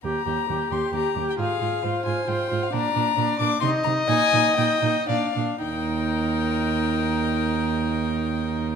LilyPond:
<<
  \new Staff \with { instrumentName = "Violin" } { \time 3/4 \key ees \major \tempo 4 = 125 bes''4. c'''8 bes''8. g''16 | f''4. aes''8 g''8. f''16 | bes''4. d'''8 c'''8 bes''8 | aes''4 g''4 f''4 |
g''2.~ | g''2. | }
  \new Staff \with { instrumentName = "Violin" } { \time 3/4 \key ees \major r4 g'2 | aes'4 c''2 | d''4 d''4 ees''4~ | ees''2 d''8 r8 |
bes'2.~ | bes'2. | }
  \new Staff \with { instrumentName = "Viola" } { \time 3/4 \key ees \major g'8 g'8 g'8 g'8 g'8 g'8 | f'8 f'8 f'8 f'8 f'8 f'8 | d'8 d'8 d'8 d'8 ees'8 ees'8 | ees'8 ees'8 ees'8 ees'8 d'8 d'8 |
ees'2.~ | ees'2. | }
  \new Staff \with { instrumentName = "Cello" } { \clef bass \time 3/4 \key ees \major ees,8 ees,8 ees,8 ees,8 ees,8 ees,8 | aes,8 aes,8 aes,8 aes,8 aes,8 aes,8 | bes,8 bes,8 bes,8 bes,8 c8 c8 | bes,8 bes,8 bes,8 bes,8 bes,8 bes,8 |
ees,2.~ | ees,2. | }
>>